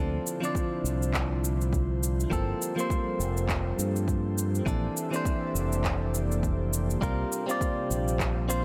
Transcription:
0.00 0.17 D2 medium
0.00 2.29 D3 medium
0.00 0.38 F3 medium
0.00 0.38 C4 medium
0.00 0.39 D4 medium
0.00 2.29 D4 medium
0.00 2.29 E4 medium
0.00 2.29 F4 medium
0.00 0.39 A4 medium
0.00 8.65 C5 medium
0.27 cabasa medium
0.40 2.27 F3 medium
0.40 2.28 C4 medium
0.40 2.29 D4 medium
0.40 cabasa soft
0.45 2.30 D5 medium
0.55 kick loud
0.55 cabasa soft
0.84 2.24 C2 medium
0.84 cabasa medium
1.02 cabasa soft
1.14 kick medium
1.14 clap medium
1.14 cabasa soft
1.44 cabasa medium
1.61 cabasa soft
1.73 kick loud
1.73 cabasa soft
2.03 cabasa medium
2.20 cabasa soft
2.30 2.52 G1 medium
2.30 2.73 F3 medium
2.30 4.65 G3 medium
2.30 2.74 A#3 medium
2.30 4.64 A#3 medium
2.30 2.74 C4 medium
2.30 8.65 G4 medium
2.30 4.65 A4 medium
2.30 2.74 A4 medium
2.30 kick loud
2.30 cabasa soft
2.62 cabasa medium
2.76 4.63 F3 medium
2.76 4.63 A#3 medium
2.76 4.64 C4 medium
2.76 cabasa soft
2.80 4.65 C5 medium
2.90 kick loud
2.90 cabasa soft
3.20 3.72 F1 medium
3.20 cabasa medium
3.37 cabasa soft
3.49 kick loud
3.49 clap medium
3.49 cabasa soft
3.78 4.60 G2 loud
3.78 cabasa medium
3.96 cabasa soft
4.08 kick loud
4.08 cabasa soft
4.38 cabasa medium
4.55 cabasa soft
4.66 4.87 A#1 medium
4.66 5.08 E3 medium
4.66 8.65 A#3 medium
4.66 5.09 C4 medium
4.66 5.09 D4 medium
4.66 6.99 A4 medium
4.66 5.10 A4 medium
4.66 6.99 D5 medium
4.66 6.99 E5 medium
4.66 kick loud
4.66 cabasa soft
4.97 cabasa medium
5.11 6.98 E3 medium
5.11 6.99 C4 medium
5.11 7.00 D4 medium
5.11 cabasa soft
5.16 7.00 C5 loud
5.25 kick loud
5.25 cabasa soft
5.55 6.95 F1 medium
5.55 cabasa medium
5.72 cabasa soft
5.84 kick loud
5.84 clap medium
5.84 cabasa soft
6.14 cabasa medium
6.32 cabasa soft
6.43 kick loud
6.43 cabasa soft
6.73 cabasa medium
6.90 cabasa soft
7.01 7.23 C2 medium
7.01 8.65 C3 medium
7.01 7.44 G3 medium
7.01 7.44 C4 medium
7.01 8.65 D4 medium
7.01 7.45 F4 medium
7.01 7.45 A#4 medium
7.01 kick loud
7.01 cabasa soft
7.32 cabasa medium
7.46 8.46 G3 medium
7.46 8.46 C4 medium
7.46 8.47 F4 medium
7.46 cabasa soft
7.51 8.48 D5 medium
7.61 kick loud
7.61 cabasa soft
7.91 8.65 A#1 medium
7.91 cabasa medium
8.08 cabasa soft
8.20 kick loud
8.20 clap medium
8.20 cabasa soft
8.49 8.61 G3 medium
8.49 8.62 C4 medium
8.49 8.62 F4 medium
8.49 8.62 C5 medium
8.49 cabasa medium

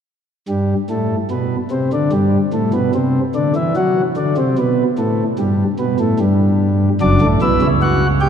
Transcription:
0.49 0.74 G2 medium
0.90 1.16 A2 medium
1.31 1.56 B2 medium
1.71 1.89 C3 medium
1.93 2.10 D3 medium
2.12 2.38 G2 medium
2.53 2.71 A2 medium
2.74 2.91 B2 medium
2.95 3.20 C3 medium
3.35 3.53 D3 medium
3.56 3.73 E3 medium
3.76 4.01 F#3 medium
4.17 4.34 D3 medium
4.37 4.55 C3 medium
4.58 4.83 B2 medium
4.99 5.24 A2 medium
5.39 5.64 G2 medium
5.79 5.97 B2 medium
6.00 6.17 A2 medium
6.20 6.89 G2 medium
7.01 7.18 F#1 medium
7.01 7.18 F#2 medium
7.01 7.26 D4 medium
7.21 7.38 A1 soft
7.21 7.39 A2 medium
7.42 7.59 B1 medium
7.42 7.59 B2 medium
7.42 7.67 E4 medium
7.62 8.29 C#2 soft
7.62 8.29 C#3 medium
7.82 8.07 F#4 medium
8.21 8.29 G4 medium

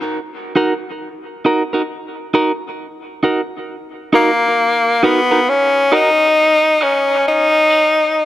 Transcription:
0.55 0.72 D#4 medium
0.55 0.73 F#4 medium
0.55 0.73 A#4 medium
1.45 1.62 D#4 medium
1.45 1.62 F#4 medium
1.45 1.62 A#4 medium
1.73 1.82 D#4 soft
1.73 1.82 F#4 soft
1.73 1.81 A#4 medium
2.34 2.51 D#4 medium
2.34 2.51 F#4 medium
2.34 2.51 A#4 loud
3.23 3.40 D#4 medium
3.23 3.40 F#4 medium
3.23 3.41 A#4 medium
4.13 5.05 A#3 medium
4.13 4.30 D#4 medium
4.13 4.30 F#4 medium
4.13 4.30 A#4 loud
5.03 5.51 B3 medium
5.03 5.19 D#4 medium
5.03 5.20 F#4 medium
5.03 5.20 A#4 medium
5.31 5.39 D#4 soft
5.31 5.39 F#4 soft
5.31 5.39 A#4 medium
5.49 5.95 C#4 loud
5.92 6.08 D#4 medium
5.92 6.85 D#4 loud
5.92 6.09 F#4 loud
5.92 6.09 A#4 loud
6.81 7.27 C#4 medium
6.81 6.98 D#4 medium
6.81 6.98 F#4 medium
6.81 6.98 A#4 medium
7.28 8.25 D#4 loud
7.70 7.87 D#4 medium
7.70 7.87 F#4 medium
7.70 7.88 A#4 medium

